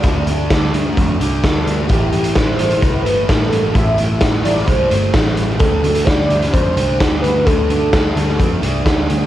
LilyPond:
<<
  \new Staff \with { instrumentName = "Soft synth lead" } { \time 4/4 \key d \dorian \tempo 4 = 129 d''4 r2. | g'4 c''4 b'4 a'4 | e''4 r8 d''8 c''4 r4 | a'4 d''4 c''4 r8 b'8 |
a'2. r4 | }
  \new Staff \with { instrumentName = "Distorted electric guitar" } { \time 4/4 \key d \dorian <d a d'>8 <a d'>8 <d a d'>8 <a d'>4 <a d'>8 <d a d'>4 | <a, e a>8 <e a>8 <a, e a>8 <e a>4 <e a>8 <a, e a>4 | <a, e a>8 <e a>8 <a, e a>8 <e a>4 <e a>8 <a, e a>4 | <d a d'>8 <a d'>8 <d a d'>8 <a d'>4 <a d'>8 <d a d'>4 |
<d a d'>8 <a d'>8 <d a d'>8 <a d'>4 <a d'>8 <d a d'>4 | }
  \new Staff \with { instrumentName = "Picked electric bass" } { \clef bass \time 4/4 \key d \dorian d,8 d,8 d,8 d,8 f,8 c,8 d,8 d,8 | a,,8 a,,8 a,,8 a,,8 c,8 g,,8 a,,8 a,,8 | a,,8 a,,8 a,,8 a,,8 c,8 g,,8 a,,8 a,,8 | d,8 d,8 d,8 d,8 f,8 c,8 d,8 d,8 |
d,8 d,8 d,8 d,8 f,8 c,8 d,8 d,8 | }
  \new DrumStaff \with { instrumentName = "Drums" } \drummode { \time 4/4 <hh bd>8 hh8 <hh bd sn>8 hh8 <hh bd>8 hh8 <hh bd sn>8 hh8 | <hh bd>8 hh16 hh16 <hh bd sn>8 hh16 hh16 <hh bd>8 hh8 <hh bd sn>8 hh8 | <hh bd>8 hh8 <hh bd sn>8 hh16 sn16 <hh bd>8 hh8 <hh bd sn>8 hh8 | <hh bd>8 hh16 hh16 <hh bd sn>8 hh16 <hh sn>16 <hh bd>8 hh8 <hh bd sn>8 hh8 |
<hh bd>8 hh8 <hh bd sn>8 hh16 sn16 <hh bd>8 hh8 <hh bd sn>8 hh8 | }
>>